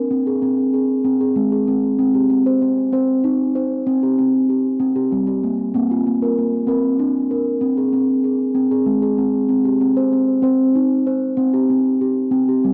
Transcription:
Already playing: A#4
0.10 C4
0.27 G#4
0.42 C4
0.73 G#4
1.05 C4
1.21 G#4
1.36 G#3
1.52 G#4
1.68 C4
1.99 C4
2.15 G4
2.30 C4
2.47 C5
2.62 C4
2.93 C4 C5
3.24 D#4
3.55 C5
3.87 C4
4.03 G4
4.19 C4
4.50 G4
4.80 C4
4.96 G4
5.12 G3
5.27 G4
5.44 A#3
5.74 A#3 C4
5.91 F4
6.07 A#3
6.22 A#4
6.38 A#3
6.67 C4 A#4
6.99 D4
7.31 A#4
7.61 C4
7.77 G#4
7.93 C4
8.24 G#4
8.55 C4
8.71 G#4
8.86 G#3
9.02 G#4
9.18 C4
9.49 C4
9.65 G4
9.81 C4
9.97 C5
10.13 C4
10.42 C4 C5
10.75 D#4
11.07 C5
11.37 C4
11.54 G4
11.70 C4
12.01 G4
12.31 C4
12.49 G4
12.64 G3

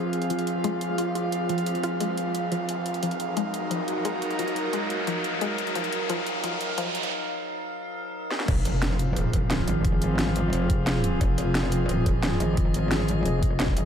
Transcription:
Already playing: F3 C4 F4 G#4 F5, riser
0.13 closed hi-hat
0.22 closed hi-hat
0.30 F3, closed hi-hat
0.39 closed hi-hat
0.47 closed hi-hat
0.64 G#3, closed hi-hat
0.81 closed hi-hat
0.98 F4, closed hi-hat
1.15 F4, closed hi-hat
1.32 closed hi-hat
1.49 F3, closed hi-hat
1.58 closed hi-hat
1.66 closed hi-hat
1.75 closed hi-hat
1.83 F4, closed hi-hat
2.00 G#3, closed hi-hat
2.17 closed hi-hat
2.35 closed hi-hat
2.52 F3, closed hi-hat
2.69 closed hi-hat
2.86 closed hi-hat
2.94 closed hi-hat
3.03 F3 F#3 D#4 A#4 F5, closed hi-hat
3.11 closed hi-hat
3.20 F#4, closed hi-hat
3.36 G#3 A#4, closed hi-hat
3.54 closed hi-hat
3.71 F3, closed hi-hat
3.88 closed hi-hat
4.05 G#3, closed hi-hat
4.22 closed hi-hat
4.31 closed hi-hat
4.39 F3, closed hi-hat
4.48 closed hi-hat
4.56 closed hi-hat
4.73 G#3, closed hi-hat
4.90 closed hi-hat
5.07 F3, closed hi-hat
5.24 closed hi-hat
5.41 G#3, closed hi-hat
5.58 closed hi-hat
5.67 closed hi-hat
5.75 F3, closed hi-hat
5.84 closed hi-hat
5.92 closed hi-hat
6.09 F3, closed hi-hat
6.27 closed hi-hat
6.44 F3, closed hi-hat
6.61 closed hi-hat
6.78 F3, closed hi-hat
6.95 closed hi-hat
7.03 closed hi-hat
8.31 snare
8.40 snare
8.48 F1 F3 C4 G#4 F5, kick, closed hi-hat, crash, impact
8.59 F4
8.65 F1, closed hi-hat
8.82 G#4, snare, closed hi-hat
8.99 closed hi-hat
9.16 D#1, closed hi-hat
9.33 D#1, kick, closed hi-hat
9.50 snare, closed hi-hat
9.68 G#1, closed hi-hat
9.85 kick, closed hi-hat
10.02 closed hi-hat
10.19 snare, closed hi-hat
10.36 closed hi-hat
10.53 F1, closed hi-hat
10.70 kick, closed hi-hat
10.87 snare, closed hi-hat
11.04 closed hi-hat
11.21 F1 D#5, kick, closed hi-hat
11.38 F1, closed hi-hat
11.55 snare, closed hi-hat
11.72 closed hi-hat
11.89 D#1, closed hi-hat
12.06 D#1, kick, closed hi-hat
12.23 snare, closed hi-hat
12.40 G#1, closed hi-hat
12.57 kick, closed hi-hat
12.74 closed hi-hat
12.91 snare, closed hi-hat
13.08 closed hi-hat
13.25 F1, closed hi-hat
13.43 kick, closed hi-hat
13.60 snare, closed hi-hat
13.68 kick
13.77 G#1, closed hi-hat

